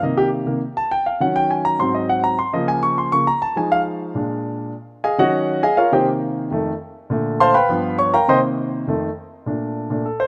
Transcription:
0.02 0.44 C3 medium
0.02 0.45 D#3 soft
0.02 0.45 A#3 medium
0.02 0.17 D#5 medium
0.17 0.26 G4 loud
0.46 0.60 C3 soft
0.46 0.60 D#3 soft
0.46 0.60 A#3 medium
0.77 0.91 A5 medium
0.91 1.05 G5 medium
1.06 1.20 F5 medium
1.20 1.76 D#3 soft
1.20 1.77 F#3 soft
1.20 1.77 C#4 medium
1.20 1.35 F#5 medium
1.36 1.50 G5 loud
1.51 1.65 G#5 medium
1.65 1.79 A#5 loud
1.79 2.35 G#2 medium
1.79 2.36 F#3 medium
1.79 2.36 C4 medium
1.79 1.94 C6 medium
1.94 2.09 D#5 medium
2.09 2.23 F#5 medium
2.24 2.38 A#5 loud
2.39 2.53 C6 medium
2.53 3.10 C#3 medium
2.53 3.11 F3 medium
2.53 3.11 A#3 medium
2.53 2.68 D#5 medium
2.68 2.82 G#5 loud
2.83 2.97 C#6 loud
2.98 3.12 C6 medium
3.12 3.25 C#3 medium
3.12 3.26 F3 soft
3.12 3.26 A#3 medium
3.12 3.27 C#6 loud
3.27 3.41 A#5 loud
3.42 3.56 A5 loud
3.56 4.12 F3 medium
3.56 4.12 G#3 soft
3.56 4.13 D#4 medium
3.56 3.71 G#5 medium
3.72 3.80 F5 loud
4.15 4.71 A#2 soft
4.15 4.71 G#3 soft
4.15 4.72 D4 medium
5.04 5.18 G#4 medium
5.04 5.18 D#5 medium
5.04 5.18 F5 medium
5.04 5.18 G#5 medium
5.18 5.61 D#3 medium
5.18 5.61 F#3 medium
5.18 5.61 C#4 medium
5.18 5.60 F#4 medium
5.18 5.60 C#5 medium
5.18 5.60 D#5 medium
5.18 5.60 F#5 loud
5.63 5.77 G#4 medium
5.63 5.77 D#5 medium
5.63 5.76 F5 medium
5.63 5.77 G#5 medium
5.77 5.92 F4 medium
5.77 5.92 A#4 medium
5.77 5.92 C#5 medium
5.77 5.92 F5 loud
5.92 6.48 C3 medium
5.92 6.48 D#3 medium
5.92 6.49 A#3 medium
5.92 6.07 G4 medium
5.92 6.07 C5 medium
5.92 6.07 D#5 medium
5.92 6.07 G5 medium
6.51 6.71 F2 medium
6.51 6.71 D#3 medium
6.51 6.72 A3 medium
7.10 7.52 A#2 medium
7.10 7.53 D3 soft
7.10 7.53 A3 medium
7.40 7.55 C5 medium
7.40 7.53 F5 medium
7.40 7.55 A5 loud
7.40 7.54 C6 loud
7.54 7.96 B4 medium
7.54 7.96 F5 medium
7.54 7.96 G5 medium
7.54 7.96 B5 loud
7.69 8.11 G2 medium
7.69 8.11 F3 medium
7.69 8.12 B3 medium
7.98 8.13 C#5 medium
7.98 8.13 C#6 loud
8.14 8.28 A#4 medium
8.14 8.28 F5 medium
8.14 8.28 G5 medium
8.14 8.28 A#5 loud
8.28 8.84 C3 medium
8.28 8.84 D#3 soft
8.28 8.85 A#3 medium
8.28 8.38 C5 medium
8.28 8.38 D#5 medium
8.28 8.38 G5 medium
8.28 8.38 C6 medium
8.87 9.07 F2 medium
8.87 9.07 D#3 medium
8.87 9.08 A3 medium
9.46 9.88 A#2 medium
9.46 9.89 A3 soft
9.46 9.89 D4 medium
9.90 10.04 A#2 medium
9.90 10.04 A3 soft
9.90 10.04 D4 medium
10.06 10.20 A4 medium
10.20 10.27 C5 loud

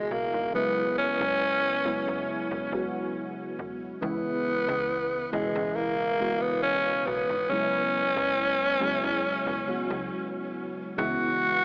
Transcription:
0.00 0.50 B2 medium
0.00 0.53 C#3 medium
0.00 0.56 E3 medium
0.00 0.13 G#3 loud
0.00 0.55 G#3 medium
0.00 0.55 B3 medium
0.00 0.56 E4 medium
0.00 0.50 F#4 medium
0.11 0.30 B1 medium
0.11 0.54 A#3 medium
0.33 0.51 G#1 medium
0.53 1.79 C#3 medium
0.53 1.80 F#3 medium
0.53 1.80 G#3 medium
0.53 0.95 B3 loud
0.53 1.80 B3 medium
0.53 1.81 E4 medium
0.98 2.68 C#4 loud
1.20 1.79 F#1 loud
1.84 2.03 F#1 medium
1.84 2.66 C#3 medium
1.84 2.67 F#3 medium
1.84 2.67 G#3 medium
1.84 2.67 B3 medium
1.84 2.67 E4 medium
2.07 2.43 F#1 loud
2.51 2.68 E1 loud
2.70 2.91 F#1 medium
2.70 3.97 C#3 medium
2.70 3.97 F#3 medium
2.70 3.97 G#3 medium
2.70 3.98 B3 medium
2.70 3.98 F#4 medium
3.59 3.95 E1 medium
4.01 4.21 C#2 loud
4.01 5.27 C#3 medium
4.01 5.28 E3 medium
4.01 5.28 G#3 medium
4.01 5.29 B3 loud
4.01 5.28 B3 medium
4.01 5.29 E4 medium
4.68 5.27 C#2 loud
5.32 5.51 C#2 medium
5.32 6.15 B2 medium
5.32 6.14 C#3 medium
5.32 6.14 E3 medium
5.32 5.77 G#3 medium
5.32 6.15 G#3 medium
5.32 6.15 E4 medium
5.55 6.44 C#2 medium
5.75 6.43 A#3 loud
6.18 7.45 C#3 medium
6.18 7.45 E3 medium
6.18 7.45 G#3 medium
6.18 7.46 B3 medium
6.18 7.46 F#4 medium
6.41 6.60 G#1 loud
6.41 6.62 B3 loud
6.62 7.07 C#4 loud
7.06 7.25 B1 medium
7.06 7.51 B3 loud
7.29 7.47 G#1 medium
7.49 8.75 C#3 medium
7.49 8.75 F#3 medium
7.49 8.76 G#3 medium
7.49 8.76 B3 medium
7.49 10.54 C#4 loud
7.49 8.77 E4 medium
8.16 8.75 F#1 loud
8.80 8.99 F#1 medium
8.80 9.62 C#3 medium
8.80 9.62 F#3 medium
8.80 9.63 G#3 medium
8.80 9.63 B3 medium
8.80 9.63 E4 medium
9.03 9.39 F#1 medium
9.47 9.64 E1 loud
9.66 10.92 C#3 medium
9.66 10.93 F#3 medium
9.66 10.93 G#3 medium
9.66 10.93 B3 medium
9.66 10.94 F#4 medium
9.90 10.11 C#2 medium
10.97 11.17 C#2 loud
10.97 11.65 C#3 medium
10.97 11.65 E3 medium
10.97 11.65 G#3 medium
10.97 11.65 B3 medium
10.97 11.65 E4 medium
10.97 11.65 F#4 loud

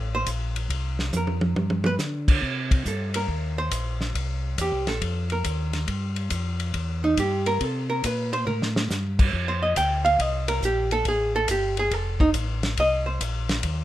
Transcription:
0.00 0.25 A1 medium
0.15 0.27 C5 loud
0.26 0.69 A#1 medium
0.26 kick soft
0.26 hi-hat pedal medium
0.26 ride medium
0.56 ride medium
0.70 1.12 C2 medium
0.70 kick soft
0.70 ride medium
0.99 snare medium
1.13 1.55 F2 medium
1.13 1.83 A#4 medium
1.13 hi-hat pedal medium
1.13 high tom soft
1.27 high tom medium
1.41 high tom medium
1.56 1.98 G2 medium
1.56 high tom medium
1.70 high tom medium
1.84 1.94 B4 loud
1.84 high tom medium
1.99 2.41 D3 medium
1.99 snare medium
1.99 hi-hat pedal medium
2.28 kick medium
2.28 crash medium
2.42 2.84 C3 medium
2.42 kick soft
2.71 kick medium
2.71 ride medium
2.85 3.27 G2 medium
2.85 3.15 A4 medium
2.85 kick soft
2.85 hi-hat pedal medium
3.14 3.55 A#4 medium
3.14 ride medium
3.28 3.70 D#2 medium
3.28 kick soft
3.58 4.11 C5 loud
3.71 4.13 A#1 medium
3.71 kick soft
3.71 hi-hat pedal medium
3.71 ride medium
4.01 snare soft
4.14 4.57 C2 medium
4.14 kick soft
4.14 ride medium
4.58 4.72 E2 medium
4.58 4.88 G4 medium
4.58 kick soft
4.58 hi-hat pedal medium
4.58 ride medium
4.72 4.87 C2 medium
4.87 5.00 A#1 medium
4.87 5.28 A4 medium
4.87 snare soft
4.87 ride soft
5.02 5.43 F2 medium
5.02 kick soft
5.02 ride medium
5.30 5.85 A#4 medium
5.30 ride soft
5.44 5.86 D#2 medium
5.44 kick soft
5.44 hi-hat pedal soft
5.44 ride medium
5.73 snare soft
5.73 ride soft
5.88 6.29 G2 medium
5.88 kick soft
5.88 ride medium
6.16 ride soft
6.30 6.73 F2 medium
6.30 kick soft
6.30 hi-hat pedal soft
6.30 ride medium
6.60 ride soft
6.74 7.16 E2 medium
6.74 kick soft
6.74 ride medium
7.04 7.17 D#4 medium
7.17 7.59 G2 medium
7.17 7.46 G4 medium
7.17 kick soft
7.17 hi-hat pedal soft
7.17 ride medium
7.46 7.64 A#4 loud
7.46 ride soft
7.61 8.02 C3 medium
7.61 7.89 A4 medium
7.61 kick soft
7.61 ride medium
7.90 8.03 A#4 medium
8.04 8.45 A#2 medium
8.04 8.32 B4 medium
8.04 kick soft
8.04 hi-hat pedal medium
8.04 ride medium
8.33 8.46 C5 loud
8.33 ride soft
8.47 8.88 A2 medium
8.47 8.64 A#4 medium
8.47 mid tom soft
8.62 snare medium
8.76 snare medium
8.90 9.31 G2 medium
8.90 snare soft
8.90 hi-hat pedal medium
9.19 kick medium
9.19 crash medium
9.33 9.75 F2 medium
9.33 kick soft
9.48 9.61 C5 medium
9.62 9.76 D#5 medium
9.76 10.18 D2 medium
9.76 10.04 G5 medium
9.76 kick soft
9.76 hi-hat pedal medium
9.76 ride medium
10.05 10.21 F5 medium
10.05 ride soft
10.19 10.61 C2 medium
10.19 10.48 D#5 medium
10.19 kick soft
10.19 ride medium
10.48 10.62 A#4 medium
10.48 ride medium
10.62 11.04 A#1 loud
10.62 10.91 G4 medium
10.62 kick soft
10.62 hi-hat pedal medium
10.91 11.05 A4 loud
10.91 ride soft
11.05 11.47 A1 medium
11.05 11.35 G#4 medium
11.05 kick soft
11.05 ride medium
11.36 11.49 A4 loud
11.48 11.90 G1 medium
11.48 11.78 G4 medium
11.48 kick soft
11.48 hi-hat pedal medium
11.48 ride medium
11.77 11.93 G#4 medium
11.77 ride soft
11.91 12.33 F1 medium
11.91 12.20 A4 medium
11.91 kick soft
11.91 ride medium
12.20 12.29 D#4 medium
12.20 kick medium
12.34 12.76 A1 loud
12.34 kick soft
12.34 hi-hat pedal medium
12.34 ride medium
12.63 snare medium
12.63 ride soft
12.77 13.19 C2 medium
12.77 13.07 D#5 medium
12.77 kick soft
12.77 ride medium
13.06 13.20 C5 medium
13.21 13.63 A#1 medium
13.21 kick soft
13.21 hi-hat pedal medium
13.21 ride medium
13.49 snare medium
13.49 ride soft
13.63 13.84 D#2 medium
13.63 kick soft
13.63 ride medium

